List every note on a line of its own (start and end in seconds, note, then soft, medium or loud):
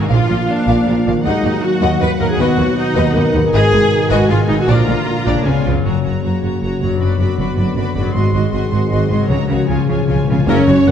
0.00 1.18 A#2 soft
0.00 0.10 G#3 medium
0.00 1.11 A#3 soft
0.00 2.36 D4 soft
0.00 0.04 F#4 medium
0.06 0.17 A#1 medium
0.06 0.17 A#2 medium
0.06 0.47 F3 medium
0.06 1.25 F3 medium
0.06 2.35 A#3 medium
0.06 0.48 F4 medium
0.06 2.39 D5 soft
0.06 1.24 F5 medium
0.06 0.28 F5 medium
0.29 0.37 A#1 soft
0.29 0.37 A#2 soft
0.29 0.37 A#4 soft
0.29 0.37 F5 soft
0.48 1.24 A#3 medium
0.48 1.06 D4 medium
0.67 0.75 A#1 medium
0.67 0.75 A#2 medium
0.67 0.86 F5 medium
0.87 0.95 A#1 soft
0.87 0.94 A#2 soft
0.87 0.95 A#4 medium
0.87 0.95 F5 soft
1.06 1.14 A#1 soft
1.06 1.13 A#2 soft
1.06 2.20 D#3 medium
1.06 1.15 D5 soft
1.06 1.14 F5 medium
1.12 2.34 A#3 soft
1.17 2.29 F#4 soft
1.21 1.32 D#2 medium
1.21 3.53 F#3 medium
1.21 1.62 G#3 medium
1.21 1.60 D#4 medium
1.21 2.39 F#5 soft
1.25 1.33 D#2 medium
1.25 1.43 D#5 medium
1.25 1.43 F#5 medium
1.25 3.50 F#5 medium
1.43 1.51 D#2 soft
1.43 1.53 D#2 soft
1.43 1.53 D#5 soft
1.62 2.38 F#3 medium
1.62 2.01 F#4 medium
1.82 1.90 D#2 medium
1.82 2.00 D#5 medium
1.82 2.00 F#5 medium
2.01 2.09 D#2 soft
2.01 2.09 B4 medium
2.01 2.09 D#5 medium
2.19 2.28 D#2 medium
2.19 2.28 D#2 soft
2.19 3.46 D#3 medium
2.19 2.30 A#4 medium
2.19 2.27 D#5 medium
2.19 2.27 F5 medium
2.26 3.39 B3 soft
2.26 2.39 G#4 medium
2.30 3.50 F#4 soft
2.35 4.64 B2 medium
2.35 2.92 D#3 medium
2.35 3.13 B3 medium
2.35 3.48 D#5 soft
2.39 2.47 D#2 medium
2.39 2.77 F#4 medium
2.39 2.57 B4 medium
2.39 2.57 D#5 medium
2.58 2.66 D#2 medium
2.58 2.66 F#4 medium
2.58 2.66 B4 soft
2.78 3.34 D#4 medium
2.95 3.03 D#2 medium
2.95 3.04 D#2 medium
2.95 3.14 B4 medium
2.95 3.14 D#5 medium
3.15 3.23 D#2 medium
3.15 3.24 F#4 medium
3.15 4.30 A#4 medium
3.15 3.23 B4 medium
3.34 3.42 D#2 medium
3.34 3.43 D#2 medium
3.34 4.61 G#2 medium
3.34 3.43 B4 medium
3.40 4.64 B3 soft
3.40 4.66 D#4 soft
3.49 3.61 G#2 medium
3.49 4.66 D#3 medium
3.49 4.68 D#5 soft
3.53 3.61 G#1 medium
3.53 4.07 G#4 loud
3.53 3.71 B4 medium
3.53 3.72 D#5 medium
3.53 4.66 G#5 medium
3.73 3.80 G#1 medium
3.73 3.80 G#2 medium
3.73 3.80 G#4 soft
3.73 3.81 B4 medium
4.10 4.19 G#1 medium
4.10 4.18 G#2 medium
4.10 4.30 F#4 medium
4.10 4.29 B4 medium
4.10 4.29 D#5 medium
4.28 4.39 G#1 medium
4.28 4.37 G#2 medium
4.28 4.67 G#3 medium
4.28 4.38 F4 medium
4.28 4.38 G#4 medium
4.28 4.38 B4 medium
4.48 4.57 G#1 medium
4.48 4.57 G#2 soft
4.48 5.39 A#2 medium
4.48 4.58 D#4 medium
4.48 4.58 B4 medium
4.56 5.41 A#3 soft
4.56 4.69 F#4 medium
4.61 5.44 D4 soft
4.65 4.76 A#1 medium
4.65 4.76 A#2 medium
4.65 5.46 D3 medium
4.65 5.05 F3 medium
4.65 5.46 A#3 medium
4.65 5.46 A#4 soft
4.65 4.86 D5 medium
4.65 5.46 A#5 medium
4.69 5.27 F4 medium
4.87 4.95 A#1 soft
4.87 4.95 A#2 soft
4.87 4.96 F4 medium
4.87 4.96 D5 soft
5.06 5.45 A#3 medium
5.26 5.34 A#1 medium
5.26 5.34 A#2 medium
5.26 5.78 C#3 medium
5.26 5.46 D4 medium
5.26 5.45 D5 medium
5.33 5.80 G#3 soft
5.37 5.75 C#4 soft
5.42 5.65 C#3 soft
5.42 5.64 G#3 medium
5.42 5.65 B3 soft
5.42 5.85 F4 medium
5.42 5.85 B4 soft
5.46 5.54 C#2 soft
5.46 5.54 C#3 soft
5.46 5.54 G#4 medium
5.46 5.54 B4 soft
5.46 5.66 G#5 medium
5.66 5.74 C#2 soft
5.66 6.82 F#2 soft
5.66 5.73 C#3 soft
5.66 5.74 B4 medium
5.72 6.86 F#3 soft
5.77 6.98 C#4 soft
5.81 5.93 F#2 soft
5.81 6.95 A#3 soft
5.81 8.10 F#4 soft
5.81 7.00 A#4 soft
5.85 5.93 F#1 soft
5.85 6.96 C#3 soft
5.85 8.11 F#3 soft
5.85 6.03 F#4 soft
5.85 6.03 C#5 soft
5.85 6.04 A#5 soft
6.04 6.13 F#1 soft
6.04 6.12 F#2 soft
6.04 6.21 F#4 soft
6.04 6.23 C#5 soft
6.04 6.23 A#5 soft
6.22 6.32 F#1 soft
6.22 6.31 F#2 soft
6.22 6.42 F#4 soft
6.22 6.41 C#5 soft
6.22 6.42 A#5 soft
6.42 6.51 F#1 soft
6.42 6.50 F#2 soft
6.42 6.59 F#4 soft
6.42 6.62 C#5 soft
6.42 6.61 A#5 soft
6.60 6.70 F#1 soft
6.60 6.70 F#2 soft
6.60 6.80 F#4 soft
6.60 6.81 C#5 soft
6.60 6.80 A#5 soft
6.81 6.89 F#1 soft
6.81 6.89 F#2 soft
6.81 8.08 F#2 soft
6.81 6.99 F#4 soft
6.81 7.01 C#5 soft
6.81 7.00 A#5 soft
6.87 8.00 F#3 soft
6.92 8.12 D4 soft
6.97 7.08 F#2 soft
6.97 8.11 B3 soft
6.97 7.18 F#4 soft
6.97 8.14 B4 soft
6.97 7.18 D5 soft
7.01 7.08 F#1 soft
7.01 8.11 D3 soft
7.01 7.19 B5 soft
7.19 7.27 F#1 soft
7.19 7.27 F#2 soft
7.19 7.37 F#4 soft
7.19 7.37 D5 soft
7.19 7.38 B5 soft
7.38 7.46 F#1 soft
7.38 7.46 F#2 soft
7.38 7.57 F#4 soft
7.38 7.56 D5 soft
7.38 7.56 B5 soft
7.57 7.65 F#1 soft
7.57 7.65 F#2 soft
7.57 7.76 F#4 soft
7.57 7.76 D5 soft
7.57 7.74 B5 soft
7.75 7.84 F#1 soft
7.75 7.84 F#2 medium
7.75 7.95 F#4 soft
7.75 7.96 D5 soft
7.75 7.95 B5 soft
7.95 8.03 F#1 soft
7.95 8.03 F#2 soft
7.95 9.22 G#2 soft
7.95 8.14 F#4 soft
7.95 8.15 D5 soft
7.95 8.14 B5 soft
8.01 9.15 F#3 soft
8.06 9.26 D#4 soft
8.10 8.22 G#1 medium
8.10 8.22 G#2 medium
8.10 9.29 C5 soft
8.14 9.26 D#3 medium
8.14 9.65 F#3 medium
8.14 9.26 C4 medium
8.14 8.33 F#4 soft
8.14 9.26 G#4 medium
8.14 8.33 D#5 medium
8.14 8.33 C6 medium
8.33 8.41 G#1 soft
8.33 8.41 G#2 soft
8.33 8.52 F#4 soft
8.33 8.52 D#5 soft
8.33 8.50 C6 soft
8.52 8.61 G#1 medium
8.52 8.60 G#2 medium
8.52 8.70 F#4 soft
8.52 8.71 D#5 soft
8.52 8.68 C6 soft
8.69 8.80 G#1 soft
8.69 8.79 G#2 soft
8.69 8.89 F#4 soft
8.69 8.90 D#5 soft
8.69 8.89 C6 soft
8.90 8.99 G#1 medium
8.90 8.98 G#2 medium
8.90 9.08 F#4 soft
8.90 9.08 D#5 soft
8.90 9.09 C6 soft
9.09 9.18 G#1 medium
9.09 9.17 G#2 soft
9.09 9.50 C#3 soft
9.09 9.27 F#4 soft
9.09 9.29 D#5 soft
9.09 9.29 C6 soft
9.16 9.64 F#3 soft
9.21 9.59 C#4 soft
9.25 9.37 C#2 soft
9.25 9.37 C#3 medium
9.25 9.47 F#4 soft
9.25 9.68 A#4 soft
9.25 9.49 C#5 soft
9.25 9.48 A#5 soft
9.29 10.24 C#3 medium
9.29 9.66 C#3 medium
9.29 10.25 C#4 medium
9.29 9.67 A#4 medium
9.48 9.57 C#2 soft
9.48 9.57 C#3 soft
9.48 10.40 C#3 soft
9.48 9.68 F#4 soft
9.48 9.68 C#5 soft
9.48 9.68 A#5 soft
9.56 10.43 F3 soft
9.60 10.85 C#4 soft
9.64 9.76 C#3 soft
9.64 9.87 F4 soft
9.64 10.47 G#4 soft
9.64 9.88 G#5 soft
9.69 9.77 C#2 soft
9.69 9.76 C#3 soft
9.69 10.24 F3 soft
9.69 10.26 G#4 soft
9.69 9.89 C#5 soft
9.77 9.84 C#3 soft
9.85 9.97 C#2 soft
9.85 9.91 C#3 soft
9.85 9.97 C#3 soft
9.85 10.07 F4 soft
9.90 9.99 C#3 soft
9.90 10.08 C#5 soft
9.90 10.06 G#5 soft
10.00 10.06 C#3 soft
10.08 10.17 C#2 soft
10.08 10.15 C#3 soft
10.08 10.16 C#3 soft
10.08 10.27 F4 soft
10.08 10.27 C#5 soft
10.08 10.28 G#5 soft
10.16 10.22 C#3 soft
10.23 10.30 C#3 medium
10.28 10.36 C#2 soft
10.28 10.37 C#3 soft
10.28 10.37 C#3 medium
10.28 10.47 F4 soft
10.28 10.46 C#5 medium
10.28 10.48 G#5 medium
10.39 10.46 C#3 medium
10.46 10.55 F#1 medium
10.46 10.56 F#1 medium
10.46 10.55 F#2 medium
10.46 10.91 F#2 medium
10.46 10.61 C#3 medium
10.46 10.60 A#3 medium
10.46 10.66 C#4 medium
10.46 10.91 C#4 loud
10.46 10.66 A#4 medium
10.46 10.91 C#5 medium
10.46 10.91 C#5 loud
10.67 10.75 F#1 medium
10.67 10.75 F#2 medium
10.67 10.91 F#3 medium
10.67 10.75 F#4 medium
10.67 10.76 C#5 medium
10.86 10.91 F#1 medium
10.86 10.91 F#2 medium
10.86 10.91 C#4 medium
10.86 10.91 A#4 medium
10.86 10.91 F#5 medium